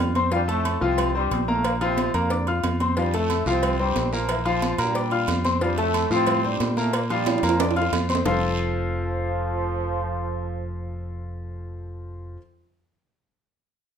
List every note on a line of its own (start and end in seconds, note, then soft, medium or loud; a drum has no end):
0.00 0.76 F2 medium
0.00 0.12 G2 medium
0.00 0.12 G3 loud
0.15 0.29 C4 medium
0.15 0.30 C5 medium
0.15 0.30 C6 medium
0.15 high conga medium
0.15 low agogo medium
0.32 0.41 G2 medium
0.32 0.45 F3 medium
0.32 0.40 G3 loud
0.32 0.46 F4 medium
0.32 0.46 F5 medium
0.32 cowbell loud
0.48 0.80 A2 medium
0.48 0.75 A3 medium
0.48 0.80 A3 loud
0.48 0.75 A4 loud
0.48 0.76 A5 medium
0.48 low agogo medium
0.65 cowbell medium
0.65 high conga medium
0.65 low agogo loud
0.81 1.28 C2 loud
0.81 1.16 C3 medium
0.81 1.09 F3 loud
0.81 1.15 C4 loud
0.81 1.09 F4 loud
0.81 1.09 F5 loud
0.81 high conga soft
0.98 cowbell loud
0.98 high conga soft
0.98 low conga medium
0.98 low agogo loud
1.15 1.46 G2 medium
1.15 1.46 G3 loud
1.15 1.42 C4 medium
1.15 1.42 C5 medium
1.15 1.42 C6 medium
1.15 high conga soft
1.31 2.09 A#1 loud
1.31 cowbell medium
1.31 high conga medium
1.31 low agogo medium
1.48 1.65 A2 medium
1.48 1.65 A3 loud
1.48 1.75 A#3 medium
1.48 1.75 A#4 medium
1.48 1.75 A#5 medium
1.48 high conga medium
1.64 1.73 A#2 medium
1.64 1.72 A#3 loud
1.64 cowbell loud
1.64 low agogo loud
1.81 2.13 C3 medium
1.81 2.08 F3 loud
1.81 2.12 C4 loud
1.81 2.08 F4 loud
1.81 2.09 F5 loud
1.81 high conga soft
1.81 low agogo medium
1.97 cowbell medium
1.97 high conga loud
1.97 low agogo medium
2.14 2.60 F2 loud
2.14 2.52 A#2 medium
2.14 2.28 A#3 medium
2.14 2.51 A#3 medium
2.14 2.28 A#4 medium
2.14 2.28 A#5 medium
2.14 high conga soft
2.14 low agogo loud
2.30 2.44 D4 medium
2.30 2.44 D5 medium
2.30 2.45 D6 medium
2.30 cowbell loud
2.47 2.75 F4 medium
2.47 2.75 F5 medium
2.47 2.75 F6 medium
2.47 high conga soft
2.47 low agogo medium
2.64 3.41 F2 medium
2.64 cowbell medium
2.64 high conga medium
2.64 low timbale medium
2.64 low agogo loud
2.80 2.94 C4 medium
2.80 2.94 C5 medium
2.80 2.94 C6 medium
2.80 high conga medium
2.80 low agogo medium
2.97 3.13 G2 medium
2.97 3.11 F3 medium
2.97 3.13 G3 loud
2.97 3.11 F4 medium
2.97 3.11 F5 medium
2.97 cowbell loud
2.97 high conga soft
2.97 long guiro medium
3.13 3.47 A2 medium
3.13 3.41 A3 medium
3.13 3.47 A3 loud
3.13 3.41 A4 medium
3.13 3.41 A5 medium
3.13 high conga soft
3.13 low agogo medium
3.30 cowbell medium
3.30 high conga medium
3.30 low agogo loud
3.30 short guiro medium
3.46 3.92 C2 loud
3.46 3.80 C3 medium
3.46 3.74 F3 loud
3.46 3.80 C4 loud
3.46 3.74 F4 medium
3.46 3.74 F5 loud
3.46 high conga soft
3.46 short guiro medium
3.63 cowbell loud
3.63 high conga soft
3.63 low conga medium
3.63 low agogo loud
3.79 4.11 G2 medium
3.79 4.11 G3 loud
3.79 4.07 C4 medium
3.79 4.07 C5 medium
3.79 4.07 C6 medium
3.79 high conga soft
3.79 low conga medium
3.96 4.73 A#1 loud
3.96 cowbell medium
3.96 high conga medium
3.96 low timbale medium
3.96 low agogo medium
3.96 short guiro medium
4.13 4.30 F3 loud
4.13 4.40 A#3 medium
4.13 4.30 F4 medium
4.13 4.40 A#4 medium
4.13 4.40 A#5 medium
4.13 short guiro medium
4.29 4.37 E3 loud
4.29 4.38 E4 medium
4.29 cowbell loud
4.29 high conga soft
4.29 low agogo loud
4.29 long guiro medium
4.45 4.73 F3 loud
4.45 4.77 F3 loud
4.45 4.73 F4 loud
4.45 4.77 F4 medium
4.45 4.73 F5 loud
4.45 high conga soft
4.45 low agogo medium
4.62 cowbell medium
4.62 high conga loud
4.62 low agogo medium
4.62 short guiro medium
4.78 5.42 G2 medium
4.78 5.25 A#2 loud
4.78 5.41 G3 loud
4.78 4.92 A#3 medium
4.78 4.92 A#4 medium
4.78 4.92 A#5 medium
4.78 low agogo loud
4.78 short guiro medium
4.95 5.09 D4 medium
4.95 5.09 D5 medium
4.95 5.09 D6 medium
4.95 cowbell loud
4.95 high conga soft
4.95 long guiro medium
5.11 5.39 F4 medium
5.11 5.39 F5 medium
5.11 5.39 F6 medium
5.11 high conga soft
5.11 low agogo medium
5.28 6.05 F2 medium
5.28 cowbell medium
5.28 high conga medium
5.28 low timbale medium
5.28 low agogo loud
5.28 short guiro medium
5.45 5.58 C4 medium
5.45 5.59 C5 medium
5.45 5.59 C6 medium
5.45 high conga medium
5.45 low agogo medium
5.45 short guiro medium
5.61 5.77 G2 medium
5.61 5.75 F3 medium
5.61 5.77 G3 loud
5.61 5.75 F4 medium
5.61 5.75 F5 medium
5.61 cowbell loud
5.61 long guiro medium
5.78 6.09 A2 medium
5.78 6.05 A3 medium
5.78 6.09 A3 loud
5.78 6.05 A4 medium
5.78 6.05 A5 medium
5.78 high conga soft
5.78 low agogo medium
5.94 cowbell medium
5.94 high conga medium
5.94 low agogo loud
5.94 short guiro medium
6.10 6.57 A2 loud
6.10 6.42 C3 medium
6.10 6.38 F3 loud
6.10 6.42 C4 loud
6.10 6.38 F4 loud
6.10 6.38 F5 loud
6.10 short guiro medium
6.27 cowbell loud
6.27 high conga soft
6.27 low conga medium
6.27 low agogo loud
6.27 long guiro medium
6.44 6.75 G2 medium
6.44 6.75 G3 medium
6.44 6.71 C4 medium
6.44 6.71 C5 medium
6.44 6.71 C6 medium
6.44 high conga soft
6.44 low conga medium
6.60 7.37 A#2 loud
6.60 cowbell medium
6.60 high conga medium
6.60 low timbale medium
6.60 low agogo medium
6.60 short guiro medium
6.77 6.94 A2 medium
6.77 6.94 A3 medium
6.77 7.04 A#3 medium
6.77 7.04 A#4 medium
6.77 7.04 A#5 medium
6.77 high conga medium
6.77 short guiro medium
6.93 7.02 A#2 medium
6.93 7.02 A#3 medium
6.93 cowbell loud
6.93 high conga soft
6.93 low agogo loud
6.93 long guiro medium
7.10 7.42 G2 medium
7.10 7.37 F3 loud
7.10 7.41 G3 loud
7.10 7.37 F4 loud
7.10 7.38 F5 loud
7.10 high conga soft
7.10 low agogo medium
7.26 cowbell medium
7.26 high conga loud
7.26 high timbale medium
7.26 low agogo medium
7.26 short guiro medium
7.38 high timbale medium
7.43 7.89 F2 loud
7.43 8.06 F3 medium
7.43 7.57 A#3 medium
7.43 8.06 F4 medium
7.43 7.57 A#4 medium
7.43 7.57 A#5 medium
7.43 low agogo loud
7.43 short guiro medium
7.49 high timbale medium
7.59 7.73 D4 medium
7.59 7.73 D5 medium
7.59 7.73 D6 medium
7.59 cowbell loud
7.59 high conga soft
7.59 low timbale loud
7.59 long guiro medium
7.71 high timbale medium
7.76 8.03 F4 medium
7.76 8.03 F5 medium
7.76 8.04 F6 medium
7.76 high conga soft
7.76 low agogo medium
7.82 low timbale medium
7.93 8.22 F2 loud
7.93 cowbell medium
7.93 high conga medium
7.93 low timbale loud
7.93 low agogo loud
7.93 short guiro medium
8.09 8.23 C4 medium
8.09 8.23 C5 medium
8.09 8.23 C6 medium
8.09 high conga medium
8.09 low agogo medium
8.09 short guiro medium
8.15 low timbale loud
8.26 12.36 F1 loud
8.26 12.36 F3 medium
8.26 11.67 F3 loud
8.26 12.37 C4 medium
8.26 12.37 F4 medium
8.26 12.37 A4 medium
8.26 12.37 C5 medium
8.26 12.37 F5 loud
8.26 low bongo loud
8.26 low conga loud
8.26 low timbale loud
8.26 long guiro loud